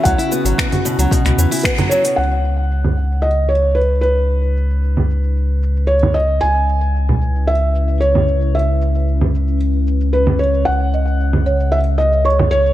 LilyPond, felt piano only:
\new Staff \with { instrumentName = "Felt piano" } { \time 4/4 \key b \mixolydian \tempo 4 = 113 fis''2. b'8 cis''8 | fis''2 dis''8 cis''8 b'8 b'8~ | b'2. cis''8 dis''8 | gis''2 e''4 cis''4 |
e''2 r4 b'8 cis''8 | fis''2 e''8 dis''8 cis''8 cis''8 | }